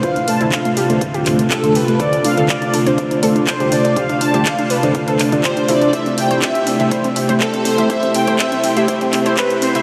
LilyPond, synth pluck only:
\new Staff \with { instrumentName = "Synth pluck" } { \time 4/4 \key d \dorian \tempo 4 = 122 e'16 a16 a16 e'16 a16 a16 g'16 a16 a16 g'16 a16 a16 a'16 a16 g'16 a16 | a'16 d'16 d'16 a'16 d'16 d'16 d'16 c''16 d'16 d'16 a'16 d'16 d'16 g'16 d'16 d'16 | g'16 d'16 d'16 g'16 d'16 d'16 b'16 d'16 d'16 a'16 d'16 d'16 g'16 d'16 e'16 d'16 | c''16 c'16 c'16 c''16 c'16 c'16 c'16 e''16 c''16 c'16 c'16 c''16 c'16 c'16 c'16 e''16 |
c''16 c'16 c'16 c''16 c'16 c'16 c'16 e''16 c''16 c'16 c'16 c''16 c'16 c'16 c'16 e''16 | }